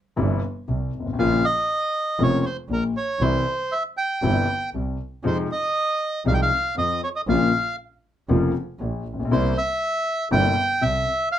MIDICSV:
0, 0, Header, 1, 4, 480
1, 0, Start_track
1, 0, Tempo, 506329
1, 1132, Time_signature, 4, 2, 24, 8
1, 10797, End_track
2, 0, Start_track
2, 0, Title_t, "Bandoneon"
2, 0, Program_c, 0, 23
2, 1129, Note_on_c, 0, 77, 67
2, 1371, Note_on_c, 0, 75, 70
2, 1377, Note_off_c, 0, 77, 0
2, 2111, Note_on_c, 0, 73, 66
2, 2112, Note_off_c, 0, 75, 0
2, 2324, Note_off_c, 0, 73, 0
2, 2327, Note_on_c, 0, 72, 59
2, 2436, Note_off_c, 0, 72, 0
2, 2584, Note_on_c, 0, 70, 68
2, 2689, Note_off_c, 0, 70, 0
2, 2813, Note_on_c, 0, 73, 63
2, 3048, Note_on_c, 0, 72, 73
2, 3059, Note_off_c, 0, 73, 0
2, 3524, Note_on_c, 0, 76, 71
2, 3544, Note_off_c, 0, 72, 0
2, 3634, Note_off_c, 0, 76, 0
2, 3766, Note_on_c, 0, 79, 70
2, 4454, Note_off_c, 0, 79, 0
2, 4995, Note_on_c, 0, 72, 61
2, 5099, Note_off_c, 0, 72, 0
2, 5234, Note_on_c, 0, 75, 72
2, 5909, Note_off_c, 0, 75, 0
2, 5951, Note_on_c, 0, 77, 78
2, 6007, Note_on_c, 0, 79, 65
2, 6008, Note_off_c, 0, 77, 0
2, 6073, Note_off_c, 0, 79, 0
2, 6087, Note_on_c, 0, 77, 78
2, 6404, Note_off_c, 0, 77, 0
2, 6429, Note_on_c, 0, 75, 72
2, 6649, Note_off_c, 0, 75, 0
2, 6671, Note_on_c, 0, 73, 65
2, 6723, Note_off_c, 0, 73, 0
2, 6787, Note_on_c, 0, 75, 64
2, 6840, Note_off_c, 0, 75, 0
2, 6914, Note_on_c, 0, 77, 71
2, 7357, Note_off_c, 0, 77, 0
2, 8837, Note_on_c, 0, 72, 72
2, 9075, Note_off_c, 0, 72, 0
2, 9079, Note_on_c, 0, 76, 82
2, 9749, Note_off_c, 0, 76, 0
2, 9786, Note_on_c, 0, 79, 88
2, 10258, Note_on_c, 0, 76, 82
2, 10274, Note_off_c, 0, 79, 0
2, 10701, Note_off_c, 0, 76, 0
2, 10731, Note_on_c, 0, 77, 82
2, 10797, Note_off_c, 0, 77, 0
2, 10797, End_track
3, 0, Start_track
3, 0, Title_t, "Grand piano"
3, 0, Program_c, 1, 0
3, 154, Note_on_c, 1, 52, 47
3, 159, Note_on_c, 1, 43, 65
3, 160, Note_on_c, 1, 31, 62
3, 161, Note_on_c, 1, 48, 51
3, 161, Note_on_c, 1, 55, 48
3, 161, Note_on_c, 1, 64, 61
3, 365, Note_off_c, 1, 52, 0
3, 367, Note_off_c, 1, 43, 0
3, 368, Note_off_c, 1, 31, 0
3, 368, Note_off_c, 1, 48, 0
3, 368, Note_off_c, 1, 55, 0
3, 368, Note_off_c, 1, 64, 0
3, 644, Note_on_c, 1, 48, 43
3, 649, Note_on_c, 1, 36, 43
3, 849, Note_off_c, 1, 48, 0
3, 852, Note_off_c, 1, 36, 0
3, 944, Note_on_c, 1, 31, 38
3, 1005, Note_on_c, 1, 32, 46
3, 1008, Note_off_c, 1, 31, 0
3, 1068, Note_off_c, 1, 32, 0
3, 1072, Note_on_c, 1, 33, 52
3, 1125, Note_on_c, 1, 49, 57
3, 1125, Note_on_c, 1, 53, 52
3, 1127, Note_on_c, 1, 34, 67
3, 1129, Note_on_c, 1, 46, 69
3, 1132, Note_off_c, 1, 33, 0
3, 1133, Note_on_c, 1, 65, 63
3, 1135, Note_on_c, 1, 58, 50
3, 1330, Note_off_c, 1, 49, 0
3, 1330, Note_off_c, 1, 53, 0
3, 1331, Note_off_c, 1, 34, 0
3, 1332, Note_off_c, 1, 46, 0
3, 1334, Note_off_c, 1, 65, 0
3, 1335, Note_off_c, 1, 58, 0
3, 2075, Note_on_c, 1, 53, 49
3, 2077, Note_on_c, 1, 41, 63
3, 2077, Note_on_c, 1, 49, 54
3, 2078, Note_on_c, 1, 65, 54
3, 2080, Note_on_c, 1, 29, 60
3, 2082, Note_on_c, 1, 58, 47
3, 2284, Note_off_c, 1, 53, 0
3, 2285, Note_off_c, 1, 41, 0
3, 2285, Note_off_c, 1, 49, 0
3, 2286, Note_off_c, 1, 65, 0
3, 2287, Note_off_c, 1, 29, 0
3, 2288, Note_off_c, 1, 58, 0
3, 2561, Note_on_c, 1, 34, 45
3, 2565, Note_on_c, 1, 46, 44
3, 2767, Note_off_c, 1, 34, 0
3, 2769, Note_off_c, 1, 46, 0
3, 3045, Note_on_c, 1, 48, 60
3, 3047, Note_on_c, 1, 52, 48
3, 3048, Note_on_c, 1, 55, 51
3, 3049, Note_on_c, 1, 36, 60
3, 3055, Note_on_c, 1, 64, 63
3, 3250, Note_off_c, 1, 48, 0
3, 3251, Note_off_c, 1, 52, 0
3, 3251, Note_off_c, 1, 55, 0
3, 3252, Note_off_c, 1, 36, 0
3, 3255, Note_off_c, 1, 64, 0
3, 4002, Note_on_c, 1, 55, 50
3, 4004, Note_on_c, 1, 48, 53
3, 4007, Note_on_c, 1, 43, 59
3, 4008, Note_on_c, 1, 31, 64
3, 4008, Note_on_c, 1, 52, 46
3, 4011, Note_on_c, 1, 64, 59
3, 4210, Note_off_c, 1, 48, 0
3, 4210, Note_off_c, 1, 55, 0
3, 4212, Note_off_c, 1, 43, 0
3, 4212, Note_off_c, 1, 52, 0
3, 4213, Note_off_c, 1, 31, 0
3, 4214, Note_off_c, 1, 64, 0
3, 4495, Note_on_c, 1, 36, 42
3, 4502, Note_on_c, 1, 48, 43
3, 4698, Note_off_c, 1, 36, 0
3, 4701, Note_off_c, 1, 48, 0
3, 4966, Note_on_c, 1, 53, 62
3, 4968, Note_on_c, 1, 48, 54
3, 4972, Note_on_c, 1, 41, 63
3, 4972, Note_on_c, 1, 63, 60
3, 4975, Note_on_c, 1, 56, 50
3, 5174, Note_off_c, 1, 48, 0
3, 5177, Note_off_c, 1, 41, 0
3, 5177, Note_off_c, 1, 53, 0
3, 5177, Note_off_c, 1, 63, 0
3, 5178, Note_off_c, 1, 56, 0
3, 5930, Note_on_c, 1, 36, 61
3, 5931, Note_on_c, 1, 48, 59
3, 5935, Note_on_c, 1, 56, 46
3, 5936, Note_on_c, 1, 63, 56
3, 5938, Note_on_c, 1, 53, 44
3, 6137, Note_off_c, 1, 36, 0
3, 6140, Note_off_c, 1, 56, 0
3, 6140, Note_off_c, 1, 63, 0
3, 6141, Note_off_c, 1, 48, 0
3, 6141, Note_off_c, 1, 53, 0
3, 6422, Note_on_c, 1, 41, 45
3, 6424, Note_on_c, 1, 53, 44
3, 6623, Note_off_c, 1, 41, 0
3, 6625, Note_off_c, 1, 53, 0
3, 6901, Note_on_c, 1, 34, 63
3, 6902, Note_on_c, 1, 46, 65
3, 6903, Note_on_c, 1, 49, 53
3, 6904, Note_on_c, 1, 53, 52
3, 6907, Note_on_c, 1, 58, 50
3, 6907, Note_on_c, 1, 65, 65
3, 7104, Note_off_c, 1, 34, 0
3, 7104, Note_off_c, 1, 46, 0
3, 7105, Note_off_c, 1, 49, 0
3, 7106, Note_off_c, 1, 53, 0
3, 7107, Note_off_c, 1, 58, 0
3, 7107, Note_off_c, 1, 65, 0
3, 7860, Note_on_c, 1, 49, 56
3, 7861, Note_on_c, 1, 53, 49
3, 7862, Note_on_c, 1, 41, 64
3, 7866, Note_on_c, 1, 29, 62
3, 7866, Note_on_c, 1, 65, 59
3, 7868, Note_on_c, 1, 58, 49
3, 8064, Note_off_c, 1, 49, 0
3, 8065, Note_off_c, 1, 41, 0
3, 8065, Note_off_c, 1, 53, 0
3, 8067, Note_off_c, 1, 29, 0
3, 8067, Note_off_c, 1, 65, 0
3, 8068, Note_off_c, 1, 58, 0
3, 8346, Note_on_c, 1, 34, 46
3, 8352, Note_on_c, 1, 46, 44
3, 8546, Note_off_c, 1, 34, 0
3, 8549, Note_off_c, 1, 46, 0
3, 8658, Note_on_c, 1, 33, 39
3, 8711, Note_off_c, 1, 33, 0
3, 8716, Note_on_c, 1, 34, 48
3, 8767, Note_on_c, 1, 35, 59
3, 8769, Note_off_c, 1, 34, 0
3, 8825, Note_off_c, 1, 35, 0
3, 8827, Note_on_c, 1, 48, 65
3, 8827, Note_on_c, 1, 55, 52
3, 8829, Note_on_c, 1, 58, 54
3, 8830, Note_on_c, 1, 36, 71
3, 8830, Note_on_c, 1, 64, 66
3, 9025, Note_off_c, 1, 55, 0
3, 9026, Note_off_c, 1, 58, 0
3, 9027, Note_off_c, 1, 36, 0
3, 9027, Note_off_c, 1, 64, 0
3, 9028, Note_off_c, 1, 48, 0
3, 9774, Note_on_c, 1, 58, 49
3, 9776, Note_on_c, 1, 55, 50
3, 9777, Note_on_c, 1, 43, 65
3, 9777, Note_on_c, 1, 48, 58
3, 9778, Note_on_c, 1, 64, 64
3, 9779, Note_on_c, 1, 31, 66
3, 9977, Note_off_c, 1, 58, 0
3, 9978, Note_off_c, 1, 43, 0
3, 9978, Note_off_c, 1, 48, 0
3, 9978, Note_off_c, 1, 55, 0
3, 9979, Note_off_c, 1, 31, 0
3, 9979, Note_off_c, 1, 64, 0
3, 10250, Note_on_c, 1, 36, 46
3, 10250, Note_on_c, 1, 48, 46
3, 10453, Note_off_c, 1, 36, 0
3, 10454, Note_off_c, 1, 48, 0
3, 10797, End_track
4, 0, Start_track
4, 0, Title_t, "Double bass"
4, 0, Program_c, 2, 43
4, 170, Note_on_c, 2, 31, 75
4, 373, Note_off_c, 2, 31, 0
4, 651, Note_on_c, 2, 36, 44
4, 853, Note_off_c, 2, 36, 0
4, 888, Note_on_c, 2, 32, 43
4, 1122, Note_off_c, 2, 32, 0
4, 1128, Note_on_c, 2, 34, 66
4, 1331, Note_off_c, 2, 34, 0
4, 2083, Note_on_c, 2, 29, 74
4, 2288, Note_off_c, 2, 29, 0
4, 2549, Note_on_c, 2, 34, 48
4, 2761, Note_off_c, 2, 34, 0
4, 3027, Note_on_c, 2, 36, 65
4, 3241, Note_off_c, 2, 36, 0
4, 4003, Note_on_c, 2, 31, 70
4, 4210, Note_off_c, 2, 31, 0
4, 4489, Note_on_c, 2, 36, 45
4, 4695, Note_off_c, 2, 36, 0
4, 4963, Note_on_c, 2, 41, 66
4, 5172, Note_off_c, 2, 41, 0
4, 5929, Note_on_c, 2, 36, 69
4, 6137, Note_off_c, 2, 36, 0
4, 6405, Note_on_c, 2, 41, 45
4, 6615, Note_off_c, 2, 41, 0
4, 6893, Note_on_c, 2, 34, 70
4, 7100, Note_off_c, 2, 34, 0
4, 7864, Note_on_c, 2, 29, 73
4, 8066, Note_off_c, 2, 29, 0
4, 8336, Note_on_c, 2, 34, 48
4, 8541, Note_off_c, 2, 34, 0
4, 8581, Note_on_c, 2, 34, 44
4, 8807, Note_off_c, 2, 34, 0
4, 8813, Note_on_c, 2, 36, 74
4, 9018, Note_off_c, 2, 36, 0
4, 9778, Note_on_c, 2, 31, 74
4, 9979, Note_off_c, 2, 31, 0
4, 10259, Note_on_c, 2, 36, 51
4, 10458, Note_off_c, 2, 36, 0
4, 10797, End_track
0, 0, End_of_file